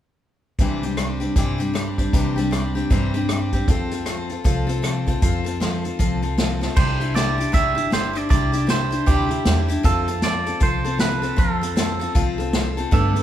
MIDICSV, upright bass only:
0, 0, Header, 1, 2, 480
1, 0, Start_track
1, 0, Key_signature, 0, "major"
1, 0, Tempo, 385604
1, 736, Time_signature, 4, 2, 24, 8
1, 16466, End_track
2, 0, Start_track
2, 0, Title_t, "Upright bass"
2, 0, Program_c, 0, 32
2, 730, Note_on_c, 0, 36, 67
2, 1574, Note_off_c, 0, 36, 0
2, 1691, Note_on_c, 0, 43, 67
2, 2535, Note_off_c, 0, 43, 0
2, 2655, Note_on_c, 0, 36, 75
2, 3497, Note_off_c, 0, 36, 0
2, 3615, Note_on_c, 0, 43, 77
2, 4458, Note_off_c, 0, 43, 0
2, 4579, Note_on_c, 0, 41, 67
2, 5420, Note_off_c, 0, 41, 0
2, 5539, Note_on_c, 0, 36, 74
2, 6380, Note_off_c, 0, 36, 0
2, 6497, Note_on_c, 0, 41, 75
2, 7339, Note_off_c, 0, 41, 0
2, 7457, Note_on_c, 0, 36, 76
2, 8299, Note_off_c, 0, 36, 0
2, 8421, Note_on_c, 0, 36, 76
2, 9261, Note_off_c, 0, 36, 0
2, 9379, Note_on_c, 0, 31, 77
2, 10219, Note_off_c, 0, 31, 0
2, 10333, Note_on_c, 0, 36, 73
2, 11175, Note_off_c, 0, 36, 0
2, 11293, Note_on_c, 0, 38, 78
2, 11703, Note_off_c, 0, 38, 0
2, 11772, Note_on_c, 0, 40, 80
2, 12182, Note_off_c, 0, 40, 0
2, 12252, Note_on_c, 0, 41, 85
2, 13093, Note_off_c, 0, 41, 0
2, 13207, Note_on_c, 0, 36, 70
2, 14049, Note_off_c, 0, 36, 0
2, 14164, Note_on_c, 0, 41, 79
2, 15007, Note_off_c, 0, 41, 0
2, 15124, Note_on_c, 0, 36, 70
2, 15967, Note_off_c, 0, 36, 0
2, 16087, Note_on_c, 0, 43, 78
2, 16466, Note_off_c, 0, 43, 0
2, 16466, End_track
0, 0, End_of_file